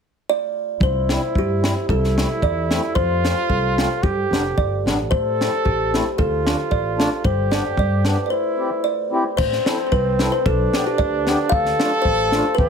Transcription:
0.29 kalimba D5
0.80 upright bass C2, trumpet E4, kalimba C5, kick
1.09 accordion G3 C4 E4, snare
1.35 upright bass G2, kalimba G4, kick
1.61 accordion G3 C4 E4, snare
1.88 upright bass C2, trumpet E4, kalimba A4, kick
2.04 snare
2.15 accordion A3 C4 E4, snare
2.42 upright bass E2, kalimba D5, kick
2.70 accordion A3 C4 E4, snare
2.95 upright bass F2, trumpet F4, kalimba C5, kick
3.23 accordion A3 C4 F4, snare
3.49 upright bass C2, kalimba A4, kick
3.77 accordion A3 C4 F4, snare
4.03 upright bass G2, trumpet G4, kalimba G4, kick
4.31 upright bass F1, accordion G3 B3 D4, snare
4.58 upright bass G1, kalimba D5, kick
4.85 upright bass A1, accordion G3 B3 D4, snare
5.10 upright bass A2, trumpet A4, kalimba C5, kick
5.39 accordion A3 C4 E4, snare
5.65 upright bass A1, kalimba G4, kick
5.92 accordion A3 C4 E4, snare
6.18 upright bass D2, trumpet F4, kalimba A4, kick
6.44 accordion A3 D4 F4, snare
6.71 upright bass A1, kalimba D5, kick
6.97 accordion A3 D4 F4, snare
7.24 upright bass G1, trumpet G4, kalimba C5, kick
7.51 accordion B3 D4 G4, kalimba D5, snare
7.77 upright bass G2, kalimba D5, kick
8.05 accordion B3 D4 G4, kalimba B4, snare
8.26 kalimba D5
8.30 trumpet E4, kalimba C5
8.57 accordion C4 E4 G4
8.84 kalimba D5
9.11 accordion C4 E4 G4
9.37 upright bass A2, trumpet C4, kalimba C5, kick, crash
9.52 snare
9.66 accordion C4 E4 A4, snare
9.87 kalimba C5
9.92 upright bass C2, kalimba B4, kick
10.19 accordion C4 E4 A4, snare
10.32 kalimba C5
10.46 upright bass B1, trumpet D4, kalimba A4, kick
10.73 accordion B3 D4 G4, snare
10.87 kalimba G4
10.98 upright bass D2, kalimba D5, kick
11.25 accordion B3 D4 G4, snare
11.49 upright bass D2, kalimba F5, kick
11.54 trumpet A4
11.66 snare
11.79 accordion A3 D4 F4, snare
12.02 upright bass A1, kalimba C5, kick
12.32 accordion A3 D4 F4, snare
12.55 upright bass E2, kalimba B4, kick
12.59 trumpet G#4

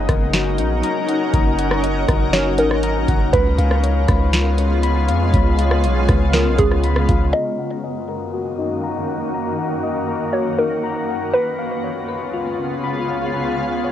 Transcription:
Already playing: ambient pad F#3 C#4 D#4 A#4, synth texture A#3 F#4 D#5, synth pluck D#5, synth keys D#5 F#5 A#5
0.09 808-style bass F#1, synth keys A#4, kick, cross-stick, closed hi-hat
0.33 synth keys F#4, snare, closed hi-hat
0.58 808-style bass A#1, synth keys D#4, closed hi-hat
0.83 synth keys A#5, closed hi-hat
1.08 synth keys F#5, closed hi-hat
1.34 808-style bass F#1, synth keys A#5, kick, closed hi-hat
1.59 synth keys F#5, closed hi-hat
1.71 cross-stick
1.83 synth keys D#5, closed hi-hat
2.08 808-style bass F#1, synth keys A#4, kick, cross-stick, closed hi-hat
2.33 synth keys F#4, synth pluck C#5, snare, closed hi-hat
2.58 808-style bass G#1, synth keys D#4, synth pluck A#4, closed hi-hat
2.71 cross-stick
2.83 synth keys A#5, closed hi-hat
3.08 808-style bass F#1, synth keys F#5, kick, closed hi-hat
3.33 808-style bass C#2, ambient pad C#3 G#3 B3 F4, synth texture B3 F4 C#5, synth pluck B4, synth keys B5, kick, closed hi-hat
3.59 808-style bass C#2, synth keys F5, closed hi-hat
3.71 cross-stick
3.84 synth keys C#5, closed hi-hat
4.09 808-style bass C#2, synth keys B4, kick, cross-stick, closed hi-hat
4.33 synth keys F4, snare, closed hi-hat
4.58 synth keys C#4, closed hi-hat
4.83 synth keys B5, closed hi-hat
5.09 808-style bass F2, synth keys F5, closed hi-hat
5.34 808-style bass C#2, synth keys B5, kick, closed hi-hat
5.59 synth keys F5, closed hi-hat
5.71 cross-stick
5.84 808-style bass B1, synth keys C#5, closed hi-hat
6.08 808-style bass C#2, synth keys B4, kick, cross-stick, closed hi-hat
6.33 synth keys F4, synth pluck A#4, snare, closed hi-hat
6.46 808-style bass B1
6.58 808-style bass C#2, synth keys C#4, synth pluck G#4, kick, closed hi-hat
6.71 cross-stick
6.83 synth keys B5, closed hi-hat
6.96 cross-stick
7.08 808-style bass C#2, synth keys F5, kick, closed hi-hat
7.33 ambient pad F#2 D#3 A#3 F#4, synth texture A#3 F#4 D#5, synth pluck D#5, synth keys A#5
7.59 synth keys F#5
7.83 synth keys D#5
8.09 synth keys A#4
8.33 synth keys F#4
8.59 synth keys D#4
8.84 synth keys A#5
9.08 synth keys F#5
9.34 synth keys A#5
9.58 synth keys F#5
9.83 synth keys D#5
10.08 synth keys A#4
10.33 synth keys F#4, synth pluck C#5
10.59 synth keys D#4, synth pluck A#4
10.83 synth keys A#5
11.09 synth keys F#5
11.33 ambient pad C#2 C#3 B3 F4, synth texture B3 F4 C#5, synth pluck B4, synth keys B5
11.58 synth keys F5
11.84 synth keys C#5
12.09 synth keys B4
12.33 synth keys F4
12.59 synth keys C#4
12.84 synth keys B5
13.09 synth keys F5
13.34 synth keys B5
13.59 synth keys F5
13.84 synth keys C#5

